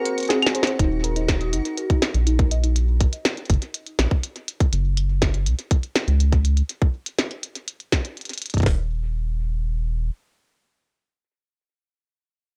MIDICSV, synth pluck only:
0, 0, Header, 1, 2, 480
1, 0, Start_track
1, 0, Key_signature, -6, "minor"
1, 0, Tempo, 491803
1, 773, Time_signature, 4, 2, 24, 8
1, 12265, End_track
2, 0, Start_track
2, 0, Title_t, "Synth pluck"
2, 0, Program_c, 0, 84
2, 292, Note_on_c, 0, 60, 84
2, 391, Note_off_c, 0, 60, 0
2, 412, Note_on_c, 0, 68, 79
2, 452, Note_off_c, 0, 68, 0
2, 532, Note_on_c, 0, 72, 75
2, 598, Note_off_c, 0, 72, 0
2, 653, Note_on_c, 0, 60, 74
2, 692, Note_off_c, 0, 60, 0
2, 774, Note_on_c, 0, 63, 84
2, 839, Note_off_c, 0, 63, 0
2, 1013, Note_on_c, 0, 70, 76
2, 1079, Note_off_c, 0, 70, 0
2, 1134, Note_on_c, 0, 63, 78
2, 1199, Note_off_c, 0, 63, 0
2, 1374, Note_on_c, 0, 75, 80
2, 1413, Note_off_c, 0, 75, 0
2, 1495, Note_on_c, 0, 63, 80
2, 1593, Note_off_c, 0, 63, 0
2, 1734, Note_on_c, 0, 70, 82
2, 1799, Note_off_c, 0, 70, 0
2, 1854, Note_on_c, 0, 63, 76
2, 1919, Note_off_c, 0, 63, 0
2, 2212, Note_on_c, 0, 63, 85
2, 2311, Note_off_c, 0, 63, 0
2, 2334, Note_on_c, 0, 70, 77
2, 2373, Note_off_c, 0, 70, 0
2, 2454, Note_on_c, 0, 75, 74
2, 2519, Note_off_c, 0, 75, 0
2, 2574, Note_on_c, 0, 63, 76
2, 2613, Note_off_c, 0, 63, 0
2, 12265, End_track
0, 0, End_of_file